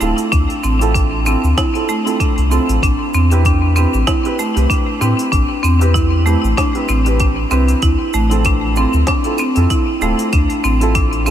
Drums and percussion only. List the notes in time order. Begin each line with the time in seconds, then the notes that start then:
0.01 cabasa
0.18 open hi-hat, cabasa
0.32 kick, open hi-hat, cabasa, claves
0.50 open hi-hat
0.64 cabasa
0.81 open hi-hat, cabasa
0.95 kick, open hi-hat, cabasa
1.26 cabasa, claves
1.44 cabasa
1.58 kick, snare, open hi-hat, cabasa
1.75 open hi-hat
1.89 cabasa
2.07 open hi-hat, cabasa
2.20 kick, open hi-hat, cabasa, claves
2.38 open hi-hat
2.52 cabasa
2.69 open hi-hat, cabasa
2.83 kick, open hi-hat, cabasa, claves
3.14 cabasa
3.31 open hi-hat, cabasa
3.45 kick, open hi-hat, cabasa
3.76 cabasa, claves
3.94 cabasa
4.07 kick, snare, open hi-hat, cabasa
4.25 open hi-hat
4.39 cabasa
4.57 open hi-hat, cabasa
4.70 kick, open hi-hat, cabasa, claves
5.02 cabasa
5.19 open hi-hat, cabasa
5.32 kick, open hi-hat, cabasa
5.64 cabasa, claves
5.81 open hi-hat, cabasa
5.95 kick, open hi-hat, cabasa
6.27 cabasa
6.44 cabasa
6.57 kick, snare, open hi-hat, cabasa, claves
6.75 open hi-hat
6.89 cabasa
7.06 open hi-hat, cabasa
7.20 kick, open hi-hat, cabasa
7.51 cabasa, claves
7.68 open hi-hat, cabasa
7.82 kick, open hi-hat, cabasa
8.14 cabasa
8.31 open hi-hat, cabasa
8.45 kick, open hi-hat, cabasa, claves
8.76 cabasa
8.93 cabasa
9.07 kick, snare, open hi-hat, cabasa
9.24 open hi-hat
9.38 cabasa, claves
9.56 open hi-hat, cabasa
9.70 kick, open hi-hat, cabasa
10.02 cabasa
10.19 open hi-hat, cabasa
10.33 kick, open hi-hat, cabasa, claves
10.50 open hi-hat
10.64 cabasa
10.81 open hi-hat, cabasa
10.95 kick, open hi-hat, cabasa
11.13 open hi-hat
11.26 cabasa, claves